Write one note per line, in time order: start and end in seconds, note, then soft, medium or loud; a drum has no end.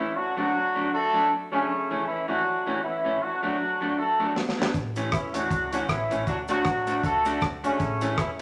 0.00 0.13 E3 medium
0.00 0.12 A3 medium
0.00 0.12 C#4 medium
0.00 0.13 C#4 medium
0.00 0.13 E4 medium
0.00 0.13 E4 loud
0.16 0.37 F#3 loud
0.16 0.38 D4 medium
0.16 0.37 F#4 loud
0.37 0.50 F#3 medium
0.37 0.89 F#3 loud
0.37 0.51 A3 medium
0.37 0.51 D4 loud
0.37 0.89 D4 medium
0.37 0.89 F#4 loud
0.75 0.89 F#3 medium
0.75 0.89 A3 medium
0.75 0.89 D4 medium
0.93 1.31 A3 loud
0.93 1.31 F#4 loud
0.93 1.31 A4 loud
1.13 1.27 F#3 medium
1.13 1.27 A3 medium
1.13 1.27 D4 loud
1.52 2.03 C#3 loud
1.52 1.65 F#3 medium
1.52 1.65 A3 medium
1.52 2.03 A3 medium
1.52 2.03 C#4 loud
1.52 1.65 D4 medium
1.90 2.03 E3 medium
1.90 2.04 A3 medium
1.90 2.04 C#4 medium
2.06 2.27 E3 medium
2.06 2.27 C#4 medium
2.06 2.27 E4 medium
2.28 2.41 E3 medium
2.28 2.79 F#3 medium
2.28 2.41 A3 medium
2.28 2.42 C#4 medium
2.28 2.79 D4 medium
2.28 2.79 F#4 loud
2.66 2.80 E3 medium
2.66 2.80 A3 medium
2.66 2.80 C#4 loud
2.83 3.21 E3 medium
2.83 3.22 C#4 medium
2.83 3.21 E4 loud
3.04 3.18 E3 medium
3.04 3.18 A3 medium
3.04 3.18 C#4 medium
3.21 3.42 F#3 medium
3.21 3.43 D4 medium
3.21 3.42 F#4 loud
3.43 3.56 F#3 medium
3.43 3.94 F#3 medium
3.43 3.56 A3 medium
3.43 3.56 D4 medium
3.43 3.94 D4 medium
3.43 3.94 F#4 loud
3.81 3.94 F#3 medium
3.81 3.94 A3 medium
3.81 3.95 D4 medium
3.98 4.33 A3 medium
3.98 4.34 F#4 medium
3.98 4.33 A4 loud
4.19 4.33 F#3 medium
4.19 4.33 A3 loud
4.19 4.33 D4 medium
4.36 snare medium
4.49 snare medium
4.58 4.71 F#3 medium
4.58 4.71 A3 medium
4.58 4.71 D4 medium
4.58 snare loud
4.74 5.07 A1 loud
4.74 kick loud
4.74 closed hi-hat medium
4.74 cabasa medium
4.96 5.09 E3 medium
4.96 5.10 A3 medium
4.96 5.10 C#4 loud
4.96 closed hi-hat loud
4.96 cabasa medium
5.12 5.32 E3 medium
5.12 5.33 C#4 medium
5.12 5.32 E4 medium
5.12 kick loud
5.12 cross-stick loud
5.12 closed hi-hat medium
5.12 cabasa medium
5.34 5.47 E3 medium
5.34 5.71 F#3 medium
5.34 5.48 A3 medium
5.34 5.48 C#4 medium
5.34 5.72 D4 medium
5.34 5.71 F#4 loud
5.34 closed hi-hat loud
5.34 cabasa medium
5.50 5.83 C#2 loud
5.50 kick loud
5.50 closed hi-hat medium
5.50 cabasa medium
5.72 5.86 E3 medium
5.72 5.80 F#3 medium
5.72 5.86 A3 medium
5.72 5.86 C#4 loud
5.72 5.80 D4 medium
5.72 5.80 F#4 medium
5.72 closed hi-hat loud
5.72 cabasa medium
5.88 6.07 A1 medium
5.88 6.24 E3 medium
5.88 6.24 C#4 medium
5.88 6.24 E4 medium
5.88 kick loud
5.88 cross-stick loud
5.88 closed hi-hat medium
5.88 cabasa medium
6.10 6.24 A1 medium
6.10 6.24 E3 medium
6.10 6.24 A3 medium
6.10 6.24 C#4 medium
6.10 closed hi-hat medium
6.10 cabasa medium
6.27 6.60 D2 loud
6.27 6.37 F#3 medium
6.27 6.38 D4 medium
6.27 6.37 F#4 loud
6.27 kick loud
6.27 closed hi-hat medium
6.27 cabasa soft
6.48 7.00 F#3 loud
6.48 6.62 A3 medium
6.48 6.62 D4 medium
6.48 7.00 D4 medium
6.48 7.00 F#4 loud
6.48 6.62 F#4 medium
6.48 closed hi-hat loud
6.48 cabasa medium
6.65 6.98 A1 medium
6.65 kick loud
6.65 cross-stick loud
6.65 closed hi-hat medium
6.65 cabasa medium
6.87 7.00 A3 medium
6.87 7.00 D4 medium
6.87 7.01 F#4 medium
6.87 closed hi-hat loud
6.87 cabasa medium
7.04 7.36 C#2 loud
7.04 7.42 A3 loud
7.04 7.42 F#4 loud
7.04 7.42 A4 loud
7.04 kick loud
7.04 closed hi-hat medium
7.04 cabasa soft
7.25 7.38 A3 loud
7.25 7.39 D4 loud
7.25 7.39 F#4 loud
7.25 closed hi-hat medium
7.25 cabasa medium
7.41 7.60 D2 loud
7.41 kick loud
7.41 cross-stick loud
7.41 closed hi-hat medium
7.41 cabasa medium
7.64 7.78 E1 medium
7.64 8.15 C#3 medium
7.64 7.77 A3 medium
7.64 8.15 A3 medium
7.64 8.15 C#4 loud
7.64 7.77 D4 medium
7.64 7.77 F#4 medium
7.64 closed hi-hat medium
7.64 cabasa medium
7.80 8.12 A1 loud
7.80 kick loud
7.80 closed hi-hat medium
7.80 cabasa medium
8.01 8.15 E3 medium
8.01 8.15 A3 loud
8.01 8.15 C#4 loud
8.01 closed hi-hat loud
8.01 cabasa medium
8.18 8.41 E2 loud
8.18 8.28 E3 medium
8.18 8.29 C#4 medium
8.18 8.28 E4 medium
8.18 kick loud
8.18 cross-stick loud
8.18 closed hi-hat medium
8.18 cabasa medium